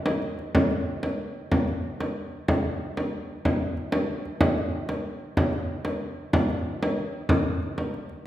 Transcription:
0, 0, Header, 1, 2, 480
1, 0, Start_track
1, 0, Tempo, 321371
1, 818, Time_signature, 6, 3, 24, 8
1, 12343, End_track
2, 0, Start_track
2, 0, Title_t, "Frame drum"
2, 85, Note_on_c, 9, 64, 74
2, 234, Note_off_c, 9, 64, 0
2, 332, Note_on_c, 9, 64, 28
2, 481, Note_off_c, 9, 64, 0
2, 580, Note_on_c, 9, 64, 29
2, 729, Note_off_c, 9, 64, 0
2, 816, Note_on_c, 9, 64, 86
2, 965, Note_off_c, 9, 64, 0
2, 1053, Note_on_c, 9, 64, 30
2, 1202, Note_off_c, 9, 64, 0
2, 1539, Note_on_c, 9, 64, 63
2, 1688, Note_off_c, 9, 64, 0
2, 2263, Note_on_c, 9, 64, 78
2, 2412, Note_off_c, 9, 64, 0
2, 2510, Note_on_c, 9, 64, 29
2, 2660, Note_off_c, 9, 64, 0
2, 2995, Note_on_c, 9, 64, 66
2, 3144, Note_off_c, 9, 64, 0
2, 3709, Note_on_c, 9, 64, 73
2, 3858, Note_off_c, 9, 64, 0
2, 4440, Note_on_c, 9, 64, 64
2, 4590, Note_off_c, 9, 64, 0
2, 5155, Note_on_c, 9, 64, 76
2, 5304, Note_off_c, 9, 64, 0
2, 5635, Note_on_c, 9, 64, 28
2, 5784, Note_off_c, 9, 64, 0
2, 5859, Note_on_c, 9, 64, 73
2, 6009, Note_off_c, 9, 64, 0
2, 6353, Note_on_c, 9, 64, 28
2, 6503, Note_off_c, 9, 64, 0
2, 6581, Note_on_c, 9, 64, 85
2, 6730, Note_off_c, 9, 64, 0
2, 6837, Note_on_c, 9, 64, 35
2, 6987, Note_off_c, 9, 64, 0
2, 7301, Note_on_c, 9, 64, 69
2, 7450, Note_off_c, 9, 64, 0
2, 8021, Note_on_c, 9, 64, 87
2, 8170, Note_off_c, 9, 64, 0
2, 8261, Note_on_c, 9, 64, 30
2, 8410, Note_off_c, 9, 64, 0
2, 8733, Note_on_c, 9, 64, 66
2, 8883, Note_off_c, 9, 64, 0
2, 9459, Note_on_c, 9, 64, 82
2, 9608, Note_off_c, 9, 64, 0
2, 9708, Note_on_c, 9, 64, 29
2, 9858, Note_off_c, 9, 64, 0
2, 10195, Note_on_c, 9, 64, 68
2, 10344, Note_off_c, 9, 64, 0
2, 10889, Note_on_c, 9, 64, 80
2, 11038, Note_off_c, 9, 64, 0
2, 11387, Note_on_c, 9, 64, 24
2, 11536, Note_off_c, 9, 64, 0
2, 11618, Note_on_c, 9, 64, 61
2, 11767, Note_off_c, 9, 64, 0
2, 11858, Note_on_c, 9, 64, 25
2, 12008, Note_off_c, 9, 64, 0
2, 12089, Note_on_c, 9, 64, 26
2, 12238, Note_off_c, 9, 64, 0
2, 12343, End_track
0, 0, End_of_file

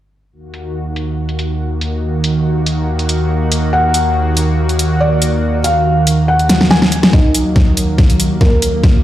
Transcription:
0, 0, Header, 1, 4, 480
1, 0, Start_track
1, 0, Key_signature, -6, "minor"
1, 0, Tempo, 425532
1, 367, Time_signature, 4, 2, 24, 8
1, 10190, End_track
2, 0, Start_track
2, 0, Title_t, "Felt piano"
2, 0, Program_c, 0, 0
2, 4207, Note_on_c, 0, 78, 93
2, 4837, Note_off_c, 0, 78, 0
2, 5645, Note_on_c, 0, 74, 91
2, 6276, Note_off_c, 0, 74, 0
2, 6365, Note_on_c, 0, 77, 92
2, 6996, Note_off_c, 0, 77, 0
2, 7086, Note_on_c, 0, 78, 85
2, 7453, Note_off_c, 0, 78, 0
2, 7565, Note_on_c, 0, 80, 85
2, 7932, Note_off_c, 0, 80, 0
2, 8045, Note_on_c, 0, 63, 76
2, 8046, Note_on_c, 0, 75, 94
2, 8676, Note_off_c, 0, 63, 0
2, 8676, Note_off_c, 0, 75, 0
2, 9485, Note_on_c, 0, 58, 75
2, 9485, Note_on_c, 0, 70, 90
2, 10116, Note_off_c, 0, 58, 0
2, 10116, Note_off_c, 0, 70, 0
2, 10190, End_track
3, 0, Start_track
3, 0, Title_t, "Analog synth pad"
3, 0, Program_c, 1, 89
3, 366, Note_on_c, 1, 51, 75
3, 367, Note_on_c, 1, 39, 79
3, 367, Note_on_c, 1, 58, 72
3, 367, Note_on_c, 1, 66, 87
3, 8001, Note_off_c, 1, 39, 0
3, 8001, Note_off_c, 1, 51, 0
3, 8001, Note_off_c, 1, 58, 0
3, 8001, Note_off_c, 1, 66, 0
3, 8046, Note_on_c, 1, 39, 81
3, 8046, Note_on_c, 1, 51, 76
3, 8046, Note_on_c, 1, 54, 89
3, 8047, Note_on_c, 1, 58, 74
3, 10190, Note_off_c, 1, 39, 0
3, 10190, Note_off_c, 1, 51, 0
3, 10190, Note_off_c, 1, 54, 0
3, 10190, Note_off_c, 1, 58, 0
3, 10190, End_track
4, 0, Start_track
4, 0, Title_t, "Drums"
4, 606, Note_on_c, 9, 42, 77
4, 718, Note_off_c, 9, 42, 0
4, 1085, Note_on_c, 9, 42, 78
4, 1198, Note_off_c, 9, 42, 0
4, 1454, Note_on_c, 9, 42, 37
4, 1566, Note_off_c, 9, 42, 0
4, 1566, Note_on_c, 9, 42, 78
4, 1679, Note_off_c, 9, 42, 0
4, 2046, Note_on_c, 9, 42, 76
4, 2158, Note_off_c, 9, 42, 0
4, 2525, Note_on_c, 9, 42, 77
4, 2638, Note_off_c, 9, 42, 0
4, 3005, Note_on_c, 9, 42, 80
4, 3118, Note_off_c, 9, 42, 0
4, 3374, Note_on_c, 9, 42, 36
4, 3486, Note_off_c, 9, 42, 0
4, 3486, Note_on_c, 9, 42, 76
4, 3598, Note_off_c, 9, 42, 0
4, 3966, Note_on_c, 9, 42, 74
4, 4079, Note_off_c, 9, 42, 0
4, 4446, Note_on_c, 9, 42, 73
4, 4559, Note_off_c, 9, 42, 0
4, 4926, Note_on_c, 9, 42, 76
4, 5039, Note_off_c, 9, 42, 0
4, 5294, Note_on_c, 9, 42, 36
4, 5405, Note_off_c, 9, 42, 0
4, 5405, Note_on_c, 9, 42, 73
4, 5518, Note_off_c, 9, 42, 0
4, 5885, Note_on_c, 9, 42, 74
4, 5998, Note_off_c, 9, 42, 0
4, 6365, Note_on_c, 9, 42, 73
4, 6478, Note_off_c, 9, 42, 0
4, 6845, Note_on_c, 9, 42, 72
4, 6958, Note_off_c, 9, 42, 0
4, 7213, Note_on_c, 9, 42, 35
4, 7326, Note_off_c, 9, 42, 0
4, 7326, Note_on_c, 9, 38, 59
4, 7326, Note_on_c, 9, 42, 73
4, 7438, Note_off_c, 9, 38, 0
4, 7438, Note_off_c, 9, 42, 0
4, 7453, Note_on_c, 9, 38, 59
4, 7565, Note_off_c, 9, 38, 0
4, 7565, Note_on_c, 9, 38, 76
4, 7678, Note_off_c, 9, 38, 0
4, 7693, Note_on_c, 9, 38, 71
4, 7805, Note_on_c, 9, 42, 74
4, 7806, Note_off_c, 9, 38, 0
4, 7918, Note_off_c, 9, 42, 0
4, 7933, Note_on_c, 9, 38, 86
4, 8045, Note_off_c, 9, 38, 0
4, 8045, Note_on_c, 9, 38, 49
4, 8046, Note_on_c, 9, 36, 95
4, 8158, Note_off_c, 9, 38, 0
4, 8159, Note_off_c, 9, 36, 0
4, 8285, Note_on_c, 9, 42, 84
4, 8398, Note_off_c, 9, 42, 0
4, 8525, Note_on_c, 9, 38, 48
4, 8526, Note_on_c, 9, 36, 95
4, 8638, Note_off_c, 9, 38, 0
4, 8639, Note_off_c, 9, 36, 0
4, 8766, Note_on_c, 9, 42, 84
4, 8878, Note_off_c, 9, 42, 0
4, 9006, Note_on_c, 9, 36, 97
4, 9006, Note_on_c, 9, 38, 51
4, 9119, Note_off_c, 9, 36, 0
4, 9119, Note_off_c, 9, 38, 0
4, 9133, Note_on_c, 9, 42, 37
4, 9246, Note_off_c, 9, 42, 0
4, 9246, Note_on_c, 9, 42, 78
4, 9358, Note_off_c, 9, 42, 0
4, 9486, Note_on_c, 9, 36, 95
4, 9486, Note_on_c, 9, 38, 50
4, 9599, Note_off_c, 9, 36, 0
4, 9599, Note_off_c, 9, 38, 0
4, 9726, Note_on_c, 9, 42, 78
4, 9839, Note_off_c, 9, 42, 0
4, 9966, Note_on_c, 9, 36, 97
4, 9966, Note_on_c, 9, 38, 52
4, 10079, Note_off_c, 9, 36, 0
4, 10079, Note_off_c, 9, 38, 0
4, 10190, End_track
0, 0, End_of_file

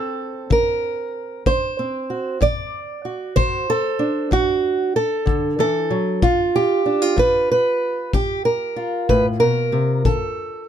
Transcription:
0, 0, Header, 1, 3, 480
1, 0, Start_track
1, 0, Tempo, 636943
1, 1815, Time_signature, 12, 3, 24, 8
1, 8051, End_track
2, 0, Start_track
2, 0, Title_t, "Steel-string acoustic guitar"
2, 0, Program_c, 0, 25
2, 0, Note_on_c, 0, 50, 66
2, 0, Note_on_c, 0, 60, 44
2, 0, Note_on_c, 0, 69, 94
2, 93, Note_off_c, 0, 50, 0
2, 378, Note_on_c, 0, 50, 71
2, 391, Note_off_c, 0, 69, 0
2, 394, Note_on_c, 0, 70, 100
2, 809, Note_off_c, 0, 50, 0
2, 1102, Note_on_c, 0, 50, 67
2, 1103, Note_off_c, 0, 70, 0
2, 1106, Note_on_c, 0, 72, 96
2, 1338, Note_off_c, 0, 60, 0
2, 1349, Note_on_c, 0, 60, 46
2, 1530, Note_off_c, 0, 50, 0
2, 1582, Note_on_c, 0, 66, 43
2, 1790, Note_off_c, 0, 66, 0
2, 1793, Note_off_c, 0, 60, 0
2, 1813, Note_on_c, 0, 50, 75
2, 1820, Note_off_c, 0, 72, 0
2, 1826, Note_on_c, 0, 74, 101
2, 2245, Note_off_c, 0, 50, 0
2, 2298, Note_on_c, 0, 66, 42
2, 2529, Note_off_c, 0, 74, 0
2, 2530, Note_on_c, 0, 50, 66
2, 2531, Note_on_c, 0, 72, 113
2, 2776, Note_off_c, 0, 66, 0
2, 2786, Note_on_c, 0, 69, 108
2, 2964, Note_off_c, 0, 50, 0
2, 3008, Note_on_c, 0, 62, 50
2, 3247, Note_on_c, 0, 50, 68
2, 3252, Note_off_c, 0, 72, 0
2, 3259, Note_off_c, 0, 69, 0
2, 3262, Note_on_c, 0, 66, 104
2, 3682, Note_off_c, 0, 50, 0
2, 3735, Note_off_c, 0, 66, 0
2, 3738, Note_on_c, 0, 69, 91
2, 3961, Note_on_c, 0, 50, 59
2, 4207, Note_off_c, 0, 50, 0
2, 4210, Note_on_c, 0, 52, 62
2, 4211, Note_off_c, 0, 69, 0
2, 4220, Note_on_c, 0, 69, 93
2, 4450, Note_on_c, 0, 54, 56
2, 4452, Note_off_c, 0, 52, 0
2, 4690, Note_on_c, 0, 43, 70
2, 4691, Note_off_c, 0, 69, 0
2, 4692, Note_off_c, 0, 54, 0
2, 4694, Note_on_c, 0, 65, 86
2, 4941, Note_on_c, 0, 67, 88
2, 5124, Note_off_c, 0, 43, 0
2, 5164, Note_off_c, 0, 65, 0
2, 5167, Note_off_c, 0, 62, 0
2, 5167, Note_on_c, 0, 62, 46
2, 5289, Note_off_c, 0, 62, 0
2, 5289, Note_on_c, 0, 65, 39
2, 5399, Note_on_c, 0, 43, 74
2, 5418, Note_off_c, 0, 67, 0
2, 5421, Note_on_c, 0, 71, 100
2, 5654, Note_off_c, 0, 71, 0
2, 5663, Note_on_c, 0, 71, 99
2, 5839, Note_off_c, 0, 43, 0
2, 6130, Note_on_c, 0, 43, 66
2, 6133, Note_off_c, 0, 71, 0
2, 6136, Note_on_c, 0, 67, 91
2, 6366, Note_off_c, 0, 67, 0
2, 6369, Note_on_c, 0, 70, 85
2, 6565, Note_off_c, 0, 43, 0
2, 6595, Note_off_c, 0, 65, 0
2, 6604, Note_on_c, 0, 65, 48
2, 6851, Note_off_c, 0, 70, 0
2, 6851, Note_on_c, 0, 45, 58
2, 6854, Note_on_c, 0, 71, 92
2, 6974, Note_off_c, 0, 71, 0
2, 7083, Note_on_c, 0, 70, 88
2, 7094, Note_off_c, 0, 45, 0
2, 7098, Note_on_c, 0, 47, 58
2, 7327, Note_on_c, 0, 48, 57
2, 7338, Note_off_c, 0, 47, 0
2, 7543, Note_off_c, 0, 65, 0
2, 7571, Note_off_c, 0, 70, 0
2, 7573, Note_off_c, 0, 48, 0
2, 7577, Note_on_c, 0, 69, 80
2, 7583, Note_on_c, 0, 50, 74
2, 8013, Note_off_c, 0, 50, 0
2, 8051, Note_off_c, 0, 69, 0
2, 8051, End_track
3, 0, Start_track
3, 0, Title_t, "Drums"
3, 383, Note_on_c, 9, 36, 65
3, 458, Note_off_c, 9, 36, 0
3, 1102, Note_on_c, 9, 36, 62
3, 1177, Note_off_c, 9, 36, 0
3, 1822, Note_on_c, 9, 36, 66
3, 1897, Note_off_c, 9, 36, 0
3, 2541, Note_on_c, 9, 36, 66
3, 2616, Note_off_c, 9, 36, 0
3, 3257, Note_on_c, 9, 36, 66
3, 3332, Note_off_c, 9, 36, 0
3, 3973, Note_on_c, 9, 36, 60
3, 4048, Note_off_c, 9, 36, 0
3, 4691, Note_on_c, 9, 36, 69
3, 4766, Note_off_c, 9, 36, 0
3, 5409, Note_on_c, 9, 36, 66
3, 5485, Note_off_c, 9, 36, 0
3, 6130, Note_on_c, 9, 36, 72
3, 6206, Note_off_c, 9, 36, 0
3, 6852, Note_on_c, 9, 36, 58
3, 6927, Note_off_c, 9, 36, 0
3, 7575, Note_on_c, 9, 36, 63
3, 7650, Note_off_c, 9, 36, 0
3, 8051, End_track
0, 0, End_of_file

